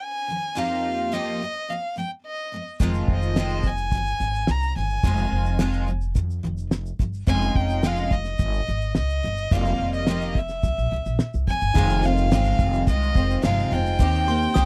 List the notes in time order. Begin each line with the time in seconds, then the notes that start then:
0.02 G#5
0.28 F2 D#3 F3
0.55 F2 F3 A#3 D#4 F4 G4 F5
1.12 F2 F3 A#3 D#4 F4 G4 D#5
1.41 F2 F3 A#3
1.69 F2 F3 A#3 F5
1.96 F2 F3 A#3 G5
2.26 D#5
2.52 F2 F3 A#3
2.80 F1 F2 D#3 F3 G#3 C4 F4, kick, shaker
2.94 shaker
3.08 F1 D#5, kick
3.22 shaker
3.36 F2 D#3 F3 G#3 C4 F4, snare, shaker
3.49 shaker
3.63 F2 D#3 F3 G#5, kick, shaker
3.77 shaker
3.91 G1 F2 D#3 F3, kick, shaker
4.06 shaker
4.19 G#1 F2 D#3 F3, shaker
4.34 shaker
4.47 C2 A#5, snare, shaker
4.62 shaker
4.76 G1 F2 D#3 F3 G#5
4.90 shaker
5.03 F1 F2 D#3 F3 G#3 C4 F4, kick, shaker
5.17 shaker
5.32 F1
5.46 shaker
5.59 F2 D#3 F3 G#3 C4 F4, snare, shaker
5.73 shaker
5.87 F2 D#3 F3
6.01 shaker
6.15 F2 D#3 F3, kick, shaker
6.30 shaker
6.43 F1 F2 D#3 F3
6.58 shaker
6.71 snare, shaker
6.86 shaker
6.99 G1 F2 D#3 F3, kick, shaker
7.13 shaker
7.27 F1 F2 D#3 G#3 C#4 D#4 F4 G#5, kick, shaker
7.41 shaker
7.55 F1 G5, kick
7.70 shaker
7.83 F2 D#3 G#3 C#4 D#4 F4 F5, snare, shaker
7.96 shaker
8.10 F2 D#3 G#3 D#5, kick
8.24 snare, shaker
8.38 G1 F2 D#3 G#3, kick, shaker
8.54 shaker
8.67 G#1 F2 D#3 G#3
8.81 shaker
8.95 C#2 D#5, snare, shaker
9.10 shaker
9.23 G1 F2 D#3 G#3
9.37 shaker
9.51 F1 F2 D#3 G3 A#3 D#4 F4 F5, kick, shaker
9.65 shaker
9.80 F1
9.93 D#5, shaker
10.06 F2 D#3 G3 A#3 D#4 F4, snare, shaker
10.21 shaker
10.35 F2 D#3 G3 E5, kick
10.49 snare, shaker
10.63 C2 C3 G3, kick, shaker
10.78 A#1, shaker
10.91 C2 C3 G3
11.06 A#1, shaker
11.19 snare, shaker
11.34 C2, shaker
11.47 F1 C3 G3 G#5, kick, shaker
11.61 G1, shaker
11.73 F1 F2 C3 D#3 G#3 C4 D#4 F4 G#4, kick, shaker
11.77 F5
11.90 shaker
12.03 D#3 G#3 C4 F4 F5, shaker
12.17 shaker
12.31 G1 F2 C3 D#3 G#3 C4 F4, snare, shaker
12.45 shaker
12.59 F1, kick, shaker
12.73 shaker
12.87 C2 D#3 G#3 C4 F4 D#5, kick, shaker
13.02 shaker
13.14 F1 D#3 G#3 C4 F4, kick, shaker
13.30 shaker
13.42 G1 F2 C3 D#3 G#3 C4 F4 F5, snare, shaker
13.59 shaker
13.71 F1 D#3 G#3 C4 F4 G5
13.86 shaker
13.99 D#2 D#3 A#3 C4 D#4 G4 C5 G5, kick, shaker
14.14 shaker
14.27 A#3 C4 G4 C6, shaker
14.42 shaker
14.54 C2 D#3 A#3 C4 G4 D#6, snare, shaker